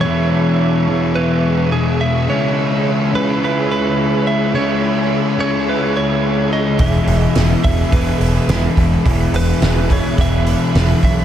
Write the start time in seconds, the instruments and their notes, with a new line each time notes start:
Already playing: string machine G#4 E5 E6
0.01 distorted electric guitar E2 B2, overdriven electric guitar E3 G#3 B3, clean electric guitar C#5, string machine C#6
0.06 distorted electric guitar E3, overdriven electric guitar E4
0.88 distorted electric guitar E2 B2 E3
1.15 overdriven electric guitar E3 G#3 B3 E4, clean electric guitar B4
1.72 clean electric guitar G#4
2.01 clean electric guitar E5
2.28 distorted electric guitar C#3 G#3 C#4, overdriven electric guitar C#3 G#3 C#4, string machine C#5 B5, clean electric guitar C#5
2.32 overdriven electric guitar E4
3.13 distorted electric guitar C#3 G#3 C#4, clean electric guitar B4
3.42 overdriven electric guitar C#3 G#3 C#4 E4, clean electric guitar B4
3.72 clean electric guitar B4
4.27 clean electric guitar E5
4.53 distorted electric guitar C#3 G#3, overdriven electric guitar C#3 G#3 C#4, clean electric guitar C#5
4.57 distorted electric guitar C#4, overdriven electric guitar E4
5.38 distorted electric guitar C#3 G#3 C#4, clean electric guitar C#5
5.67 overdriven electric guitar C#3 G#3 C#4 E4, clean electric guitar B4
5.97 clean electric guitar C#5
6.53 clean electric guitar D#5
6.77 picked electric bass E1, distorted electric guitar E2 B2, overdriven electric guitar E3 G#3 B3, string machine E5 B5, clean electric guitar E5, kick, open hi-hat
6.82 distorted electric guitar E3, overdriven electric guitar E4
7.07 picked electric bass E1, open hi-hat
7.19 clean electric guitar D#5
7.35 picked electric bass E1, snare, open hi-hat
7.62 picked electric bass E1, distorted electric guitar E2 B2 E3, clean electric guitar E5, kick, open hi-hat
7.92 picked electric bass E1, overdriven electric guitar E3 G#3 B3 E4, clean electric guitar B4, kick, open hi-hat
8.20 picked electric bass E1, open hi-hat
8.48 picked electric bass E1, snare, open hi-hat
8.77 picked electric bass E1, kick, open hi-hat
9.04 picked electric bass E1, distorted electric guitar E2 B2 E3, overdriven electric guitar E3 G#3 B3 E4, string machine F#6, kick, open hi-hat
9.33 picked electric bass E1, clean electric guitar B4, open hi-hat
9.62 picked electric bass E1, snare, open hi-hat
9.89 distorted electric guitar E2 B2 E3, clean electric guitar C#5, kick, open hi-hat
10.17 picked electric bass E1, overdriven electric guitar E3 G#3 B3 E4, clean electric guitar E5, kick, open hi-hat
10.47 open hi-hat
10.75 picked electric bass E1, snare, open hi-hat
11.03 picked electric bass B1, clean electric guitar E5, kick, open hi-hat